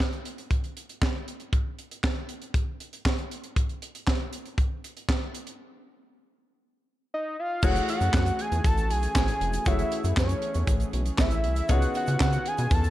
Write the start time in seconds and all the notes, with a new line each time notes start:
0.00 kick, snare, clap
0.13 closed hi-hat
0.25 closed hi-hat
0.38 closed hi-hat
0.51 kick, closed hi-hat
0.64 closed hi-hat
0.77 closed hi-hat
0.89 closed hi-hat
1.02 kick, snare, clap
1.28 closed hi-hat
1.40 closed hi-hat
1.53 kick, closed hi-hat
1.79 closed hi-hat
1.91 closed hi-hat
2.04 kick, snare, clap
2.29 closed hi-hat
2.42 closed hi-hat
2.54 kick, closed hi-hat
2.80 closed hi-hat
2.93 closed hi-hat
3.05 kick, snare, clap
3.18 closed hi-hat
3.31 closed hi-hat
3.44 closed hi-hat
3.56 kick, closed hi-hat
3.69 closed hi-hat
3.82 closed hi-hat
3.95 closed hi-hat
4.07 kick, snare, clap
4.33 closed hi-hat
4.46 closed hi-hat
4.58 kick, closed hi-hat
4.84 closed hi-hat
4.97 closed hi-hat
5.09 kick, snare, clap
5.34 closed hi-hat
5.47 closed hi-hat
7.14 D#5
7.40 F5
7.62 F#1 E3 A3 C#4 E4 F#4 G#4 C#5 F#5, kick, crash, shaker
7.76 closed hi-hat, shaker
7.88 F#5, closed hi-hat, shaker
8.01 F#2, closed hi-hat, shaker
8.14 F#2, kick, snare, clap, shaker
8.26 closed hi-hat, shaker
8.39 G#5, closed hi-hat
8.52 E2, closed hi-hat, shaker
8.64 A1 A5, kick, closed hi-hat, shaker
8.78 closed hi-hat, shaker
8.90 B1 G#5, closed hi-hat, shaker
9.02 closed hi-hat, shaker
9.15 A1, kick, snare, clap, shaker
9.28 closed hi-hat, shaker
9.41 F1, closed hi-hat
9.53 closed hi-hat, shaker
9.65 F#1 A3 E4 F#4 G#4 C#5 E5, kick, closed hi-hat, shaker
9.79 closed hi-hat, shaker
9.91 closed hi-hat, shaker
10.04 F#2, closed hi-hat, shaker
10.17 F#2 C#5, kick, snare, clap, shaker
10.29 closed hi-hat, shaker
10.42 closed hi-hat
10.54 E2, closed hi-hat, shaker
10.67 A1, kick, closed hi-hat, shaker
10.80 closed hi-hat, shaker
10.93 B1, closed hi-hat, shaker
11.06 closed hi-hat, shaker
11.18 A1 E5, kick, snare, clap, shaker
11.31 closed hi-hat, shaker
11.44 C2, closed hi-hat
11.56 closed hi-hat, shaker
11.69 C#2 D#3 B3 D#4 F4 G#4 C#5 F#5, kick, closed hi-hat, shaker
11.82 closed hi-hat, shaker
11.94 F#5, closed hi-hat, shaker
12.07 C#3, closed hi-hat, shaker
12.20 C#3 F#5, kick, snare, clap, shaker
12.33 closed hi-hat, shaker
12.46 G#5, closed hi-hat
12.58 B2, closed hi-hat, shaker
12.71 E2 A5, kick, closed hi-hat, shaker
12.84 closed hi-hat, shaker